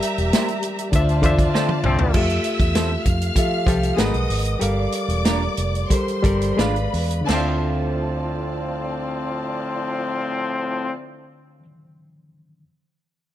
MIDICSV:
0, 0, Header, 1, 7, 480
1, 0, Start_track
1, 0, Key_signature, -1, "minor"
1, 0, Tempo, 606673
1, 1696, Time_signature, 4, 2, 24, 8
1, 3147, Tempo, 643777
1, 4587, Tempo, 688863
1, 5547, Tempo, 712589
1, 9629, End_track
2, 0, Start_track
2, 0, Title_t, "String section"
2, 0, Program_c, 0, 48
2, 0, Note_on_c, 0, 67, 86
2, 0, Note_on_c, 0, 76, 87
2, 0, Note_on_c, 0, 82, 91
2, 713, Note_off_c, 0, 82, 0
2, 714, Note_off_c, 0, 67, 0
2, 714, Note_off_c, 0, 76, 0
2, 736, Note_on_c, 0, 81, 92
2, 737, Note_on_c, 0, 74, 82
2, 738, Note_on_c, 0, 65, 86
2, 1674, Note_off_c, 0, 81, 0
2, 1675, Note_off_c, 0, 65, 0
2, 1675, Note_off_c, 0, 74, 0
2, 1690, Note_on_c, 0, 88, 87
2, 1691, Note_on_c, 0, 76, 81
2, 2398, Note_off_c, 0, 76, 0
2, 2398, Note_off_c, 0, 88, 0
2, 2412, Note_on_c, 0, 77, 83
2, 2414, Note_on_c, 0, 89, 88
2, 3131, Note_off_c, 0, 77, 0
2, 3131, Note_off_c, 0, 89, 0
2, 3144, Note_on_c, 0, 87, 96
2, 3145, Note_on_c, 0, 75, 80
2, 3605, Note_off_c, 0, 87, 0
2, 3606, Note_off_c, 0, 75, 0
2, 3617, Note_on_c, 0, 86, 94
2, 3621, Note_on_c, 0, 74, 78
2, 4568, Note_off_c, 0, 86, 0
2, 4570, Note_off_c, 0, 74, 0
2, 4584, Note_on_c, 0, 72, 73
2, 4586, Note_on_c, 0, 84, 86
2, 5048, Note_off_c, 0, 72, 0
2, 5049, Note_off_c, 0, 84, 0
2, 5058, Note_on_c, 0, 71, 77
2, 5058, Note_on_c, 0, 83, 86
2, 5536, Note_off_c, 0, 71, 0
2, 5536, Note_off_c, 0, 83, 0
2, 5542, Note_on_c, 0, 74, 83
2, 5544, Note_on_c, 0, 81, 91
2, 5545, Note_on_c, 0, 65, 81
2, 7975, Note_off_c, 0, 74, 0
2, 7976, Note_off_c, 0, 65, 0
2, 7976, Note_off_c, 0, 81, 0
2, 9629, End_track
3, 0, Start_track
3, 0, Title_t, "Reed electric piano"
3, 0, Program_c, 1, 4
3, 0, Control_c, 1, 64, 127
3, 0, Note_on_c, 1, 55, 98
3, 0, Note_on_c, 1, 67, 83
3, 0, Note_on_c, 1, 70, 83
3, 0, Note_on_c, 1, 74, 92
3, 0, Note_on_c, 1, 76, 102
3, 308, Note_off_c, 1, 55, 0
3, 311, Note_off_c, 1, 67, 0
3, 315, Note_off_c, 1, 70, 0
3, 318, Note_off_c, 1, 74, 0
3, 322, Note_off_c, 1, 76, 0
3, 728, Note_on_c, 1, 50, 88
3, 738, Note_on_c, 1, 62, 75
3, 745, Note_on_c, 1, 65, 68
3, 751, Note_on_c, 1, 72, 77
3, 753, Control_c, 1, 64, 0
3, 757, Note_on_c, 1, 76, 102
3, 884, Control_c, 1, 64, 127
3, 926, Note_off_c, 1, 50, 0
3, 931, Note_off_c, 1, 62, 0
3, 934, Note_off_c, 1, 65, 0
3, 937, Note_off_c, 1, 72, 0
3, 941, Note_off_c, 1, 76, 0
3, 966, Note_on_c, 1, 50, 89
3, 973, Note_on_c, 1, 62, 84
3, 978, Note_on_c, 1, 65, 84
3, 985, Note_on_c, 1, 72, 85
3, 994, Note_on_c, 1, 76, 99
3, 1459, Note_off_c, 1, 50, 0
3, 1463, Note_off_c, 1, 62, 0
3, 1465, Note_off_c, 1, 65, 0
3, 1469, Note_off_c, 1, 72, 0
3, 1473, Note_off_c, 1, 76, 0
3, 1687, Note_on_c, 1, 57, 78
3, 1693, Note_on_c, 1, 65, 79
3, 1700, Note_on_c, 1, 67, 71
3, 1706, Control_c, 1, 64, 0
3, 1709, Note_on_c, 1, 69, 76
3, 1715, Note_on_c, 1, 76, 87
3, 1837, Control_c, 1, 64, 127
3, 2342, Note_off_c, 1, 57, 0
3, 2346, Note_off_c, 1, 65, 0
3, 2349, Note_off_c, 1, 67, 0
3, 2354, Note_off_c, 1, 69, 0
3, 2357, Note_off_c, 1, 76, 0
3, 2653, Note_on_c, 1, 53, 67
3, 2660, Note_on_c, 1, 65, 62
3, 2668, Note_on_c, 1, 67, 56
3, 2674, Note_on_c, 1, 69, 66
3, 2681, Note_on_c, 1, 76, 76
3, 2821, Note_off_c, 1, 53, 0
3, 2824, Note_off_c, 1, 65, 0
3, 2828, Note_off_c, 1, 67, 0
3, 2831, Note_off_c, 1, 69, 0
3, 2835, Note_off_c, 1, 76, 0
3, 2898, Note_on_c, 1, 53, 83
3, 2902, Note_on_c, 1, 65, 76
3, 2909, Note_on_c, 1, 67, 80
3, 2918, Note_on_c, 1, 69, 77
3, 2925, Note_on_c, 1, 77, 92
3, 3136, Note_on_c, 1, 56, 90
3, 3143, Note_on_c, 1, 68, 80
3, 3145, Note_off_c, 1, 53, 0
3, 3147, Note_off_c, 1, 65, 0
3, 3151, Note_off_c, 1, 67, 0
3, 3153, Note_on_c, 1, 70, 87
3, 3155, Note_off_c, 1, 69, 0
3, 3156, Control_c, 1, 64, 0
3, 3158, Note_off_c, 1, 77, 0
3, 3160, Note_on_c, 1, 71, 81
3, 3165, Note_on_c, 1, 78, 95
3, 3287, Control_c, 1, 64, 127
3, 3517, Note_off_c, 1, 56, 0
3, 3520, Note_off_c, 1, 68, 0
3, 3525, Note_off_c, 1, 70, 0
3, 3528, Note_off_c, 1, 71, 0
3, 3531, Note_off_c, 1, 78, 0
3, 3605, Note_on_c, 1, 55, 77
3, 3608, Note_on_c, 1, 67, 76
3, 3617, Note_on_c, 1, 69, 68
3, 3623, Note_on_c, 1, 70, 67
3, 3627, Control_c, 1, 64, 0
3, 3630, Note_on_c, 1, 77, 81
3, 3734, Control_c, 1, 64, 127
3, 4264, Note_off_c, 1, 55, 0
3, 4266, Note_off_c, 1, 67, 0
3, 4270, Note_off_c, 1, 69, 0
3, 4273, Note_off_c, 1, 70, 0
3, 4277, Note_off_c, 1, 77, 0
3, 4579, Note_on_c, 1, 55, 64
3, 4584, Note_on_c, 1, 67, 62
3, 4590, Note_on_c, 1, 69, 60
3, 4595, Note_on_c, 1, 70, 59
3, 4603, Note_on_c, 1, 72, 81
3, 4742, Note_off_c, 1, 55, 0
3, 4744, Note_off_c, 1, 67, 0
3, 4747, Note_off_c, 1, 69, 0
3, 4749, Note_off_c, 1, 70, 0
3, 4753, Note_off_c, 1, 72, 0
3, 4808, Note_on_c, 1, 55, 83
3, 4811, Note_on_c, 1, 67, 75
3, 4818, Note_on_c, 1, 69, 72
3, 4827, Note_on_c, 1, 70, 71
3, 4830, Note_on_c, 1, 74, 94
3, 5046, Note_on_c, 1, 56, 81
3, 5052, Note_off_c, 1, 55, 0
3, 5052, Note_on_c, 1, 68, 74
3, 5054, Note_off_c, 1, 67, 0
3, 5055, Note_off_c, 1, 74, 0
3, 5057, Note_off_c, 1, 69, 0
3, 5059, Note_on_c, 1, 71, 73
3, 5062, Note_off_c, 1, 70, 0
3, 5064, Note_on_c, 1, 74, 81
3, 5068, Control_c, 1, 64, 0
3, 5072, Note_on_c, 1, 77, 97
3, 5174, Control_c, 1, 64, 127
3, 5441, Note_off_c, 1, 56, 0
3, 5444, Note_off_c, 1, 68, 0
3, 5448, Note_off_c, 1, 71, 0
3, 5450, Note_off_c, 1, 74, 0
3, 5454, Note_off_c, 1, 77, 0
3, 5495, Note_on_c, 1, 50, 75
3, 5519, Note_on_c, 1, 62, 70
3, 5547, Note_on_c, 1, 72, 67
3, 5555, Control_c, 1, 64, 0
3, 5571, Note_on_c, 1, 76, 63
3, 5597, Note_on_c, 1, 77, 86
3, 5659, Control_c, 1, 64, 127
3, 8423, Note_off_c, 1, 50, 0
3, 8435, Note_off_c, 1, 62, 0
3, 8449, Note_off_c, 1, 72, 0
3, 8461, Note_off_c, 1, 76, 0
3, 8474, Note_off_c, 1, 77, 0
3, 9156, Control_c, 1, 64, 0
3, 9629, End_track
4, 0, Start_track
4, 0, Title_t, "Clean electric guitar"
4, 0, Program_c, 2, 27
4, 268, Note_on_c, 2, 58, 75
4, 272, Note_on_c, 2, 64, 72
4, 273, Note_on_c, 2, 67, 83
4, 277, Note_on_c, 2, 72, 85
4, 379, Note_off_c, 2, 58, 0
4, 381, Note_off_c, 2, 64, 0
4, 381, Note_off_c, 2, 67, 0
4, 383, Note_off_c, 2, 72, 0
4, 1220, Note_on_c, 2, 60, 78
4, 1224, Note_on_c, 2, 65, 77
4, 1225, Note_on_c, 2, 69, 87
4, 1227, Note_on_c, 2, 72, 93
4, 1332, Note_off_c, 2, 60, 0
4, 1334, Note_off_c, 2, 65, 0
4, 1334, Note_off_c, 2, 69, 0
4, 1335, Note_off_c, 2, 72, 0
4, 2177, Note_on_c, 2, 60, 77
4, 2180, Note_on_c, 2, 64, 73
4, 2184, Note_on_c, 2, 69, 76
4, 2188, Note_on_c, 2, 72, 85
4, 2289, Note_off_c, 2, 60, 0
4, 2291, Note_off_c, 2, 64, 0
4, 2293, Note_off_c, 2, 69, 0
4, 2294, Note_off_c, 2, 72, 0
4, 3152, Note_on_c, 2, 59, 73
4, 3156, Note_on_c, 2, 63, 75
4, 3156, Note_on_c, 2, 66, 76
4, 3161, Note_on_c, 2, 71, 84
4, 3259, Note_off_c, 2, 59, 0
4, 3261, Note_off_c, 2, 63, 0
4, 3261, Note_off_c, 2, 66, 0
4, 3263, Note_off_c, 2, 71, 0
4, 4095, Note_on_c, 2, 58, 75
4, 4100, Note_on_c, 2, 62, 70
4, 4101, Note_on_c, 2, 65, 77
4, 4103, Note_on_c, 2, 70, 82
4, 4209, Note_off_c, 2, 58, 0
4, 4212, Note_off_c, 2, 62, 0
4, 4212, Note_off_c, 2, 65, 0
4, 4213, Note_off_c, 2, 70, 0
4, 5053, Note_on_c, 2, 56, 74
4, 5058, Note_on_c, 2, 62, 77
4, 5059, Note_on_c, 2, 65, 75
4, 5063, Note_on_c, 2, 71, 76
4, 5169, Note_off_c, 2, 56, 0
4, 5171, Note_off_c, 2, 62, 0
4, 5172, Note_off_c, 2, 65, 0
4, 5174, Note_off_c, 2, 71, 0
4, 5536, Note_on_c, 2, 60, 68
4, 5549, Note_on_c, 2, 65, 65
4, 5560, Note_on_c, 2, 69, 76
4, 5570, Note_on_c, 2, 72, 77
4, 8470, Note_off_c, 2, 60, 0
4, 8477, Note_off_c, 2, 65, 0
4, 8482, Note_off_c, 2, 69, 0
4, 8487, Note_off_c, 2, 72, 0
4, 9629, End_track
5, 0, Start_track
5, 0, Title_t, "Trombone section"
5, 0, Program_c, 3, 61
5, 1217, Note_on_c, 3, 53, 79
5, 1217, Note_on_c, 3, 57, 77
5, 1217, Note_on_c, 3, 60, 80
5, 1319, Note_off_c, 3, 53, 0
5, 1319, Note_off_c, 3, 57, 0
5, 1319, Note_off_c, 3, 60, 0
5, 1455, Note_on_c, 3, 53, 92
5, 1455, Note_on_c, 3, 57, 80
5, 1455, Note_on_c, 3, 60, 102
5, 1760, Note_off_c, 3, 60, 0
5, 1761, Note_off_c, 3, 53, 0
5, 1761, Note_off_c, 3, 57, 0
5, 5545, Note_on_c, 3, 53, 71
5, 5546, Note_on_c, 3, 45, 77
5, 5546, Note_on_c, 3, 60, 88
5, 7976, Note_off_c, 3, 53, 0
5, 7977, Note_off_c, 3, 45, 0
5, 7977, Note_off_c, 3, 60, 0
5, 9629, End_track
6, 0, Start_track
6, 0, Title_t, "Fingered electric bass"
6, 0, Program_c, 4, 33
6, 143, Note_on_c, 4, 28, 86
6, 236, Note_off_c, 4, 28, 0
6, 734, Note_on_c, 4, 38, 95
6, 974, Note_off_c, 4, 38, 0
6, 974, Note_on_c, 4, 40, 86
6, 1161, Note_off_c, 4, 40, 0
6, 1457, Note_on_c, 4, 36, 87
6, 1642, Note_off_c, 4, 36, 0
6, 1697, Note_on_c, 4, 41, 89
6, 1881, Note_off_c, 4, 41, 0
6, 2053, Note_on_c, 4, 40, 96
6, 2333, Note_off_c, 4, 40, 0
6, 2417, Note_on_c, 4, 41, 86
6, 2604, Note_off_c, 4, 41, 0
6, 2901, Note_on_c, 4, 36, 83
6, 3091, Note_off_c, 4, 36, 0
6, 3150, Note_on_c, 4, 32, 97
6, 3239, Note_off_c, 4, 32, 0
6, 3266, Note_on_c, 4, 35, 85
6, 3355, Note_off_c, 4, 35, 0
6, 3385, Note_on_c, 4, 32, 89
6, 3566, Note_off_c, 4, 32, 0
6, 3619, Note_on_c, 4, 31, 106
6, 3802, Note_off_c, 4, 31, 0
6, 3971, Note_on_c, 4, 28, 86
6, 4254, Note_off_c, 4, 28, 0
6, 4340, Note_on_c, 4, 29, 84
6, 4531, Note_off_c, 4, 29, 0
6, 4818, Note_on_c, 4, 31, 97
6, 5003, Note_off_c, 4, 31, 0
6, 5060, Note_on_c, 4, 32, 106
6, 5246, Note_off_c, 4, 32, 0
6, 5302, Note_on_c, 4, 40, 96
6, 5492, Note_off_c, 4, 40, 0
6, 5547, Note_on_c, 4, 38, 94
6, 8448, Note_off_c, 4, 38, 0
6, 9629, End_track
7, 0, Start_track
7, 0, Title_t, "Drums"
7, 19, Note_on_c, 9, 42, 86
7, 98, Note_off_c, 9, 42, 0
7, 143, Note_on_c, 9, 42, 45
7, 222, Note_off_c, 9, 42, 0
7, 261, Note_on_c, 9, 42, 92
7, 264, Note_on_c, 9, 38, 113
7, 340, Note_off_c, 9, 42, 0
7, 343, Note_off_c, 9, 38, 0
7, 382, Note_on_c, 9, 42, 39
7, 461, Note_off_c, 9, 42, 0
7, 495, Note_on_c, 9, 42, 77
7, 574, Note_off_c, 9, 42, 0
7, 621, Note_on_c, 9, 42, 51
7, 701, Note_off_c, 9, 42, 0
7, 735, Note_on_c, 9, 42, 105
7, 736, Note_on_c, 9, 36, 91
7, 814, Note_off_c, 9, 42, 0
7, 815, Note_off_c, 9, 36, 0
7, 861, Note_on_c, 9, 42, 36
7, 940, Note_off_c, 9, 42, 0
7, 974, Note_on_c, 9, 36, 93
7, 976, Note_on_c, 9, 42, 87
7, 1053, Note_off_c, 9, 36, 0
7, 1055, Note_off_c, 9, 42, 0
7, 1096, Note_on_c, 9, 36, 93
7, 1097, Note_on_c, 9, 42, 50
7, 1175, Note_off_c, 9, 36, 0
7, 1176, Note_off_c, 9, 42, 0
7, 1224, Note_on_c, 9, 38, 67
7, 1303, Note_off_c, 9, 38, 0
7, 1336, Note_on_c, 9, 48, 68
7, 1415, Note_off_c, 9, 48, 0
7, 1453, Note_on_c, 9, 45, 108
7, 1532, Note_off_c, 9, 45, 0
7, 1572, Note_on_c, 9, 43, 100
7, 1651, Note_off_c, 9, 43, 0
7, 1692, Note_on_c, 9, 49, 86
7, 1696, Note_on_c, 9, 36, 102
7, 1771, Note_off_c, 9, 49, 0
7, 1776, Note_off_c, 9, 36, 0
7, 1816, Note_on_c, 9, 42, 37
7, 1895, Note_off_c, 9, 42, 0
7, 1929, Note_on_c, 9, 42, 76
7, 2008, Note_off_c, 9, 42, 0
7, 2054, Note_on_c, 9, 36, 101
7, 2057, Note_on_c, 9, 42, 47
7, 2133, Note_off_c, 9, 36, 0
7, 2136, Note_off_c, 9, 42, 0
7, 2177, Note_on_c, 9, 42, 91
7, 2180, Note_on_c, 9, 38, 114
7, 2256, Note_off_c, 9, 42, 0
7, 2259, Note_off_c, 9, 38, 0
7, 2417, Note_on_c, 9, 42, 64
7, 2419, Note_on_c, 9, 36, 86
7, 2497, Note_off_c, 9, 42, 0
7, 2498, Note_off_c, 9, 36, 0
7, 2544, Note_on_c, 9, 42, 50
7, 2623, Note_off_c, 9, 42, 0
7, 2657, Note_on_c, 9, 36, 86
7, 2659, Note_on_c, 9, 42, 102
7, 2736, Note_off_c, 9, 36, 0
7, 2738, Note_off_c, 9, 42, 0
7, 2901, Note_on_c, 9, 36, 89
7, 2909, Note_on_c, 9, 42, 81
7, 2980, Note_off_c, 9, 36, 0
7, 2989, Note_off_c, 9, 42, 0
7, 3031, Note_on_c, 9, 42, 46
7, 3110, Note_off_c, 9, 42, 0
7, 3151, Note_on_c, 9, 42, 76
7, 3152, Note_on_c, 9, 38, 116
7, 3225, Note_off_c, 9, 42, 0
7, 3227, Note_off_c, 9, 38, 0
7, 3268, Note_on_c, 9, 42, 33
7, 3342, Note_off_c, 9, 42, 0
7, 3387, Note_on_c, 9, 46, 81
7, 3462, Note_off_c, 9, 46, 0
7, 3499, Note_on_c, 9, 42, 49
7, 3574, Note_off_c, 9, 42, 0
7, 3619, Note_on_c, 9, 42, 87
7, 3694, Note_off_c, 9, 42, 0
7, 3852, Note_on_c, 9, 42, 73
7, 3927, Note_off_c, 9, 42, 0
7, 3980, Note_on_c, 9, 42, 45
7, 4054, Note_off_c, 9, 42, 0
7, 4097, Note_on_c, 9, 42, 93
7, 4100, Note_on_c, 9, 38, 113
7, 4172, Note_off_c, 9, 42, 0
7, 4174, Note_off_c, 9, 38, 0
7, 4336, Note_on_c, 9, 42, 71
7, 4410, Note_off_c, 9, 42, 0
7, 4468, Note_on_c, 9, 42, 40
7, 4543, Note_off_c, 9, 42, 0
7, 4583, Note_on_c, 9, 36, 89
7, 4585, Note_on_c, 9, 42, 95
7, 4653, Note_off_c, 9, 36, 0
7, 4654, Note_off_c, 9, 42, 0
7, 4707, Note_on_c, 9, 42, 33
7, 4776, Note_off_c, 9, 42, 0
7, 4817, Note_on_c, 9, 36, 97
7, 4821, Note_on_c, 9, 42, 78
7, 4887, Note_off_c, 9, 36, 0
7, 4890, Note_off_c, 9, 42, 0
7, 4940, Note_on_c, 9, 42, 49
7, 5009, Note_off_c, 9, 42, 0
7, 5060, Note_on_c, 9, 42, 76
7, 5062, Note_on_c, 9, 38, 107
7, 5130, Note_off_c, 9, 42, 0
7, 5131, Note_off_c, 9, 38, 0
7, 5179, Note_on_c, 9, 42, 34
7, 5249, Note_off_c, 9, 42, 0
7, 5303, Note_on_c, 9, 46, 75
7, 5372, Note_off_c, 9, 46, 0
7, 5420, Note_on_c, 9, 42, 50
7, 5490, Note_off_c, 9, 42, 0
7, 5546, Note_on_c, 9, 57, 70
7, 5549, Note_on_c, 9, 38, 93
7, 5613, Note_off_c, 9, 57, 0
7, 5617, Note_off_c, 9, 38, 0
7, 9629, End_track
0, 0, End_of_file